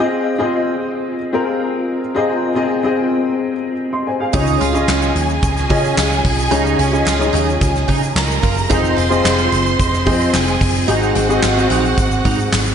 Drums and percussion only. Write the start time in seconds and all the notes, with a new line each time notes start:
4.33 kick, open hi-hat, shaker
4.47 shaker
4.61 hi-hat pedal, open hi-hat
4.75 shaker
4.88 snare, clap, hi-hat pedal, open hi-hat, shaker
5.02 shaker
5.16 hi-hat pedal, open hi-hat
5.29 shaker
5.43 kick, hi-hat pedal, open hi-hat, shaker
5.57 snare, shaker
5.70 kick, hi-hat pedal, open hi-hat
5.85 shaker
5.97 snare, clap, hi-hat pedal, open hi-hat, shaker
6.12 shaker
6.25 kick, hi-hat pedal, open hi-hat
6.40 shaker
6.52 hi-hat pedal, open hi-hat, shaker
6.66 shaker
6.79 hi-hat pedal, open hi-hat
6.94 shaker
7.07 snare, clap, hi-hat pedal, open hi-hat, shaker
7.22 shaker
7.34 hi-hat pedal, open hi-hat
7.50 shaker
7.61 kick, hi-hat pedal, open hi-hat, shaker
7.75 snare, shaker
7.89 kick, hi-hat pedal, open hi-hat
8.03 shaker
8.16 snare, clap, hi-hat pedal, open hi-hat, shaker
8.31 shaker
8.43 kick, hi-hat pedal, open hi-hat
8.58 shaker
8.70 kick, hi-hat pedal, open hi-hat, shaker
8.85 shaker
8.98 hi-hat pedal, open hi-hat
9.12 shaker
9.25 snare, clap, hi-hat pedal, open hi-hat, shaker
9.38 shaker
9.52 hi-hat pedal, open hi-hat
9.66 shaker
9.79 kick, hi-hat pedal, open hi-hat, shaker
9.93 snare, shaker
10.07 kick, hi-hat pedal, open hi-hat
10.21 shaker
10.34 snare, clap, hi-hat pedal, open hi-hat, shaker
10.48 shaker
10.61 kick, hi-hat pedal, open hi-hat
10.75 shaker
10.88 hi-hat pedal, open hi-hat, shaker
11.03 shaker
11.15 hi-hat pedal, open hi-hat
11.31 shaker
11.42 snare, clap, hi-hat pedal, open hi-hat, shaker
11.58 shaker
11.70 hi-hat pedal, open hi-hat
11.85 shaker
11.98 kick, hi-hat pedal, open hi-hat, shaker
12.11 shaker
12.25 kick, hi-hat pedal, open hi-hat
12.40 shaker
12.52 snare, clap, hi-hat pedal, open hi-hat, shaker
12.66 shaker